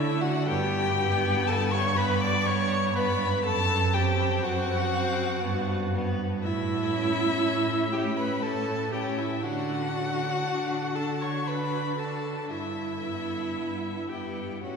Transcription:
Already playing: D3 A3 E4 E5
0.21 F#4 F#5
0.46 G2 B3 G4 G5
0.98 B3
1.47 G2 A4 A5
1.71 C#5 C#6
1.96 B3 B4 B5
2.21 D5 D6
2.46 G2 C#5 C#6
2.94 B3 B4 B5
3.45 F#2 A4 A5
3.94 C4 G4 G5
4.43 F#2 F#4 F#5
4.94 C4
5.43 G2 B3
5.93 B3
6.42 A2 E4 E5
6.93 C#4
7.43 A2
7.92 C#4 G4 G5
8.17 B4 B5
8.42 A2 A4 A5
8.92 C#4 G4 G5
9.18 E4 E5
9.43 D3 D4 F#4 F#5
9.94 D4
10.45 D3
10.95 D4 A4 A5
11.21 C#5 C#6
11.47 D3 B4 B5
11.98 D4 A4 A5
12.50 G2 E4 E5
13.02 B3
13.56 G2
14.09 B3 G4 G5
14.64 A2 C#4 F#4 F#5

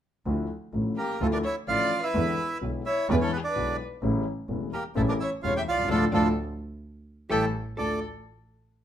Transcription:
0.26 D2 D3 F3 A3 E4
0.73 A1 A2 D3 F3 A3 E4
0.96 A#3 G4 A#4
1.20 D2 D3 F3 A3 E4 F4 A4
1.32 D4 A#4 D5
1.44 E4 C#5 E5
1.67 A1 A2 D3 F3 A3 E4 F4 D5 F5
2.03 E4 B4 E5
2.14 E2 D3 E3 G#3 B3 E4
2.61 B1 B2 D3 G#3 B3 E4
2.86 E4 C#5 E5
3.09 E2 D3 E3 G#3 B3 D4 E4 B4 D5
3.20 C#4 A4 C#5
3.32 B3 G#4 B4
3.44 D4 D5
3.48 B4
3.56 B1 B2 D3 G#3 B3 E4
4.02 A1 A2 C#3 G3 A3 E4
4.49 E1 E2 C#3 G3 A3 E4
4.73 A#3 G4 A#4
4.95 A1 A2 C#3 G3 A3 E4 A4
5.08 D4 A#4 D5
5.20 E4 C#5 E5
5.43 E1 E2 C#3 G3 A3 E4 F4 C#5 F5
5.56 G4 E5 G5
5.66 C2 F4 D5 F5
5.73 B1
5.79 C2
5.84 C#2
5.88 D2 A2 D3 F3 D4 F4 A4 D5
6.12 D2 A2 D3 F3 D4 F4 A4 D5
7.30 A1 E3 G3 A3 E4 G4 A4 C#5
7.77 D2 A3 D4 F4 A4 D5

